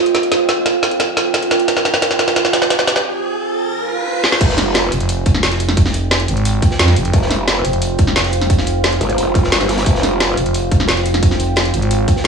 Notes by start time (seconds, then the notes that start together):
Already playing: F4 C5 G5, riser
0.06 closed hi-hat
0.15 snare, closed hi-hat
0.23 closed hi-hat
0.32 snare, closed hi-hat
0.49 snare, closed hi-hat
0.66 snare, closed hi-hat
0.83 snare, closed hi-hat
0.91 closed hi-hat
1.00 snare, closed hi-hat
1.17 snare, closed hi-hat
1.34 snare, closed hi-hat
1.43 closed hi-hat
1.51 snare, closed hi-hat
1.60 closed hi-hat
1.68 G#5, snare, closed hi-hat
1.77 snare
1.85 snare, closed hi-hat
1.94 snare
2.02 snare, closed hi-hat
2.11 snare
2.19 snare, closed hi-hat
2.28 snare, closed hi-hat
2.36 snare, closed hi-hat
2.45 snare
2.53 snare, closed hi-hat
2.62 snare
2.70 snare, closed hi-hat
2.79 snare, closed hi-hat
2.87 snare, closed hi-hat
2.96 snare, closed hi-hat
3.73 swell
4.24 snare
4.32 snare
4.41 F1 F4 C5 G5, kick, closed hi-hat, crash
4.49 snare
4.58 snare, closed hi-hat
4.74 snare, closed hi-hat
4.92 F1, closed hi-hat
5.00 closed hi-hat
5.09 closed hi-hat
5.26 kick, closed hi-hat
5.35 snare
5.43 snare, closed hi-hat
5.51 snare, closed hi-hat
5.60 closed hi-hat
5.69 snare, closed hi-hat
5.77 kick, closed hi-hat
5.86 snare
5.94 closed hi-hat
6.11 snare, closed hi-hat
6.20 closed hi-hat
6.28 G#1, closed hi-hat
6.37 closed hi-hat
6.45 closed hi-hat
6.62 kick, closed hi-hat
6.71 snare
6.79 F2, snare, closed hi-hat
6.88 snare, closed hi-hat
6.96 F1, closed hi-hat
7.05 closed hi-hat
7.13 F1 F5, kick, closed hi-hat
7.22 snare
7.31 snare, closed hi-hat
7.48 snare, closed hi-hat
7.65 F1, closed hi-hat
7.73 closed hi-hat
7.82 closed hi-hat
7.98 kick, closed hi-hat
8.07 snare
8.16 snare, closed hi-hat
8.24 snare, closed hi-hat
8.32 closed hi-hat
8.41 snare, closed hi-hat
8.50 kick, closed hi-hat
8.58 snare
8.67 closed hi-hat
8.84 snare, closed hi-hat
8.92 closed hi-hat
9.01 G#1, closed hi-hat
9.10 closed hi-hat
9.18 F1, closed hi-hat
9.35 kick, closed hi-hat
9.44 snare
9.52 G1, snare, closed hi-hat
9.60 snare, closed hi-hat
9.69 snare, closed hi-hat
9.77 snare, closed hi-hat
9.86 F1 G5, kick, closed hi-hat
9.95 snare
10.03 snare, closed hi-hat
10.20 snare, closed hi-hat
10.37 F1, closed hi-hat
10.46 closed hi-hat
10.54 closed hi-hat
10.71 kick, closed hi-hat
10.80 snare
10.88 snare, closed hi-hat
10.97 snare, closed hi-hat
11.06 closed hi-hat
11.14 snare, closed hi-hat
11.23 kick, closed hi-hat
11.31 snare
11.40 closed hi-hat
11.56 snare, closed hi-hat
11.65 closed hi-hat
11.74 G#1, closed hi-hat
11.82 closed hi-hat
11.91 closed hi-hat
12.08 kick, closed hi-hat
12.16 snare